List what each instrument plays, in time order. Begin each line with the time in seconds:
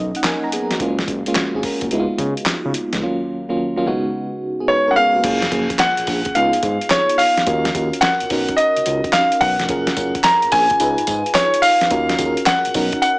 Already playing: analog synth bass B1, fm electric piano F#3 A#3 C#4 D#4 D#5
0.15 fm electric piano F#5, closed hi-hat
0.24 fm electric piano C#4 A#4 G#5, snare, clap, closed hi-hat
0.44 fm electric piano A#5
0.52 fm electric piano B3 G#4, closed hi-hat
0.71 fm electric piano A#3 F#4, snare, closed hi-hat
0.80 analog synth bass F#1, fm electric piano G#3 A#3 C#4 F4, kick, closed hi-hat
0.99 snare
1.08 analog synth bass F#1, kick, closed hi-hat
1.26 fm electric piano G#3 A#3 C#4 F4, closed hi-hat
1.35 analog synth bass G#1, snare, clap, closed hi-hat
1.54 analog synth bass G#1, fm electric piano G#4
1.63 fm electric piano C#4 A#4, kick, open hi-hat
1.81 analog synth bass F#1, fm electric piano A#3 F#4, kick, closed hi-hat
1.91 analog synth bass C#2, fm electric piano G#3 B3 D#4 E4, closed hi-hat
2.00 fm electric piano F4
2.18 analog synth bass C#3, kick, closed hi-hat
2.37 closed hi-hat
2.46 snare, clap, closed hi-hat
2.65 analog synth bass C#3
2.74 closed hi-hat
2.93 analog synth bass C#2, snare, closed hi-hat
3.02 fm electric piano D#2 F#3 A#3 C#4 F4
3.48 fm electric piano D#2 F#3 A#3 C#4 F4
3.76 fm electric piano D#2 F#3 A#3 C#4 F4
3.86 fm electric piano C#3 G#3 B3 D#4 F#4
4.60 fm electric piano B3 G#4
4.68 fm electric piano D#4 B4, grand piano C#5
4.88 fm electric piano C#4 A#4, grand piano F#5
4.96 fm electric piano B3 G#4, grand piano F5
5.15 fm electric piano A#3 F#4
5.23 analog synth bass F#1, fm electric piano A#3 C#4 F4 G#4, kick, closed hi-hat, crash
5.42 snare, closed hi-hat
5.52 analog synth bass F#1, fm electric piano F3 A#3 C#4 G#4, kick, closed hi-hat
5.70 kick, closed hi-hat
5.79 grand piano F#5, snare, clap, closed hi-hat
5.97 analog synth bass A#1, closed hi-hat
6.07 analog synth bass A#1, kick, open hi-hat
6.25 kick, closed hi-hat
6.35 analog synth bass C#2, fm electric piano B3 D#4 F4 G#4, grand piano F5, closed hi-hat
6.53 analog synth bass G#2, closed hi-hat
6.63 analog synth bass G#2, kick, closed hi-hat
6.81 closed hi-hat
6.90 grand piano C#5, snare, clap, closed hi-hat
7.09 closed hi-hat
7.18 grand piano F5, open hi-hat
7.37 snare, closed hi-hat
7.46 analog synth bass D#2, fm electric piano C#4 F4 F#4 A#4, kick, closed hi-hat
7.65 snare, closed hi-hat
7.75 analog synth bass D#2, fm electric piano C#4 F4 F#4 A#4, kick, closed hi-hat
7.93 closed hi-hat
8.01 grand piano F#5, snare, clap, closed hi-hat
8.20 analog synth bass B1, closed hi-hat
8.30 analog synth bass B1, fm electric piano C#4 D#4 F#4 A#4, kick, open hi-hat
8.49 kick, closed hi-hat
8.57 grand piano D#5, closed hi-hat
8.77 analog synth bass C#2, closed hi-hat
8.86 analog synth bass C#2, closed hi-hat
9.04 kick, closed hi-hat
9.13 grand piano F5, snare, clap, closed hi-hat
9.32 closed hi-hat
9.41 analog synth bass B1, grand piano F#5, kick, open hi-hat
9.59 analog synth bass F1, snare, closed hi-hat
9.69 analog synth bass F#1, fm electric piano C#4 F4 G#4 A#4, kick, closed hi-hat
9.87 snare, closed hi-hat
9.97 analog synth bass F#1, fm electric piano C#4 F4 G#4 A#4, kick, closed hi-hat, tambourine
10.15 kick, closed hi-hat
10.24 grand piano A#5, snare, clap, closed hi-hat, tambourine
10.42 analog synth bass A#1, closed hi-hat
10.52 analog synth bass A#1, grand piano G#5, kick, open hi-hat, tambourine
10.70 kick, closed hi-hat
10.80 analog synth bass C#2, fm electric piano D#4 F4 G#4 B4, closed hi-hat, tambourine
10.98 analog synth bass G#2, closed hi-hat
11.07 analog synth bass G#2, kick, closed hi-hat, tambourine
11.26 closed hi-hat
11.35 grand piano C#5, snare, clap, closed hi-hat, tambourine
11.54 closed hi-hat
11.62 grand piano F5, open hi-hat, tambourine
11.81 snare, closed hi-hat
11.91 analog synth bass D#2, fm electric piano C#4 F4 F#4 A#4, kick, closed hi-hat
12.09 snare, closed hi-hat
12.18 analog synth bass D#2, fm electric piano C#4 F4 F#4 G#4, kick, closed hi-hat, tambourine
12.26 fm electric piano A#4
12.37 closed hi-hat
12.46 grand piano F#5, snare, clap, closed hi-hat, tambourine
12.65 analog synth bass B1, closed hi-hat
12.74 analog synth bass B1, fm electric piano C#4 D#4 F#4 A#4, kick, open hi-hat, tambourine
12.92 kick, closed hi-hat
13.02 grand piano F#5, closed hi-hat, tambourine